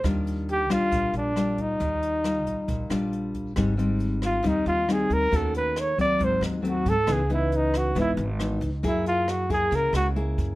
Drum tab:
HH |xxxxxxxx|xxxxxxxx|xxxxxxxx|xxxxxxxx|
SD |r--r--r-|--r--r--|r--r--r-|--r--r--|
BD |o--oo--o|o--oo--o|o---o---|o--oo--o|

HH |xxxxxxxx|xxxxxxxx|
SD |r--r--r-|--r--r--|
BD |o---o---|o--oo--o|